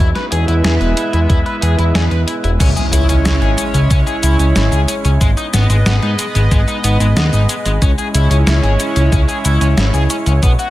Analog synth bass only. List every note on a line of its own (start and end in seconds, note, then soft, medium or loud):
0.00 0.13 E2 loud
0.32 0.46 E2 medium
0.48 0.62 E2 medium
0.64 0.78 E2 loud
0.81 0.94 E1 medium
1.13 1.27 E2 medium
1.30 1.43 E2 loud
1.62 1.76 E2 loud
1.79 1.92 E2 medium
1.95 2.09 E2 loud
2.11 2.25 E2 medium
2.44 2.58 E1 medium
2.60 2.74 C#2 loud
2.93 3.06 C#2 loud
3.09 3.23 C#2 medium
3.25 3.39 C#2 loud
3.42 3.55 G#1 medium
3.74 3.88 C#2 medium
3.91 4.04 C#2 loud
4.23 4.37 C#2 loud
4.40 4.53 C#2 medium
4.56 4.70 G#1 loud
4.72 4.86 C#2 medium
5.05 5.18 C#2 medium
5.21 5.35 G#1 loud
5.54 5.67 G#1 loud
5.70 5.84 G#1 medium
5.86 6.00 G#1 loud
6.03 6.16 G#2 medium
6.35 6.49 G#1 medium
6.52 6.65 G#1 loud
6.84 6.98 G#1 loud
7.00 7.14 G#1 medium
7.17 7.30 D#2 loud
7.33 7.47 G#1 medium
7.66 7.79 G#1 medium
7.82 7.96 C#2 loud
8.15 8.28 C#2 loud
8.31 8.44 C#2 medium
8.47 8.61 C#2 loud
8.63 8.77 G#1 medium
8.96 9.10 C#2 medium
9.45 9.59 C#2 loud
9.61 9.75 C#2 medium
9.78 9.91 G#1 loud
9.94 10.08 C#2 medium
10.27 10.40 C#2 medium
10.43 10.56 B1 loud